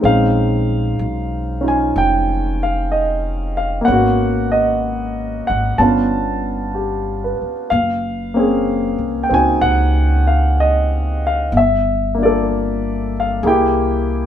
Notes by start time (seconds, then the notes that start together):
0.01 A#1 G#3 C4 C#4 F5
0.06 D#4
0.99 B1
1.61 C#4 D#4 F4
1.68 G#5
1.96 F1 G5
2.63 F5
2.92 D#5
3.57 F5
3.81 A#3 B3 F#5
3.88 G#1 C#4
3.92 F#4
4.52 D#5
5.47 G#1 F#5
5.78 G1 B3 C#4 D4 F4 A5
6.75 G4
7.24 B4
7.42 muted upright bass stroke
7.70 F#1 F5
8.34 A#3 C4 C#4
8.39 G#4
8.98 C2
9.23 G5
9.29 C#2 C4 D#4 F#4
9.34 G#5
9.61 C#2 F#5
10.27 F5
10.60 D#5
11.27 F5
11.52 G1
11.57 E5
12.14 A#3 D4
12.22 F4 A4 D5
13.20 F5
13.43 C2 A#3 E4 G#4
13.47 G4 G5